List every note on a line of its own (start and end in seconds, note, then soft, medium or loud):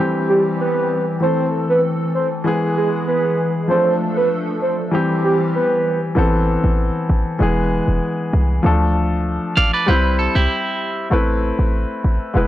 0.00 1.19 E3 medium
0.00 1.21 E3 medium
0.00 1.19 G3 medium
0.00 1.21 G3 medium
0.00 1.20 C4 medium
0.00 2.43 C4 medium
0.00 1.20 G4 medium
0.00 1.21 G4 medium
0.29 0.42 G4 medium
0.60 1.05 B4 medium
1.20 2.42 E3 medium
1.20 3.67 E3 medium
1.20 2.43 A3 medium
1.20 2.43 C4 medium
1.20 2.44 A4 medium
1.20 1.46 C5 loud
1.69 1.81 B4 medium
2.15 2.28 C5 medium
2.44 3.66 E3 medium
2.44 3.67 G#3 medium
2.44 3.68 G#3 medium
2.44 3.67 B3 medium
2.44 3.68 G#4 medium
2.77 2.90 G#4 medium
3.08 3.52 B4 medium
3.68 4.90 F3 medium
3.68 4.92 F3 medium
3.68 4.90 A3 medium
3.68 4.92 A3 medium
3.68 4.92 D4 medium
3.68 4.91 D4 medium
3.68 4.92 A4 medium
3.68 4.91 A4 medium
3.68 3.94 C5 loud
4.17 4.28 B4 medium
4.62 4.75 C5 medium
4.92 6.13 E3 medium
4.92 6.16 E3 medium
4.92 6.14 G3 medium
4.92 6.16 G3 medium
4.92 6.16 C4 medium
4.92 6.15 C4 medium
4.92 6.16 G4 medium
4.92 6.15 G4 medium
5.24 5.37 G4 medium
5.55 5.99 B4 medium
6.15 6.57 A1 loud
6.15 7.37 E3 medium
6.15 7.38 B3 medium
6.15 7.38 C4 medium
6.15 7.39 A4 medium
6.64 6.90 A1 medium
7.10 7.24 A1 medium
7.39 7.81 E1 loud
7.39 8.61 E3 medium
7.39 8.61 G#3 medium
7.39 8.62 B3 medium
7.39 8.63 G#4 medium
7.88 8.00 E1 medium
8.33 8.60 C2 loud
8.63 9.39 D2 loud
8.63 9.85 F3 medium
8.63 9.85 A3 medium
8.63 9.86 D4 medium
8.63 9.86 A4 medium
9.57 9.71 A1 loud
9.57 9.72 D5 medium
9.57 9.73 F5 medium
9.73 9.87 B4 medium
9.73 9.87 D5 medium
9.86 10.28 C2 loud
9.86 11.08 G3 medium
9.86 11.09 C4 medium
9.86 11.09 E4 medium
9.86 10.18 G4 medium
9.86 10.17 B4 medium
9.86 11.10 C5 medium
10.19 10.34 A4 medium
10.35 10.48 C2 medium
10.35 11.08 E4 medium
10.35 11.08 G4 medium
11.10 11.52 A1 loud
11.10 12.32 A3 medium
11.10 12.33 C4 medium
11.10 12.33 E4 medium
11.10 12.34 B4 medium
11.59 11.85 A1 medium
12.04 12.18 A1 medium
12.34 12.47 E1 loud
12.34 12.47 G#3 medium
12.34 12.47 B3 medium
12.34 12.47 E4 medium
12.34 12.47 B4 medium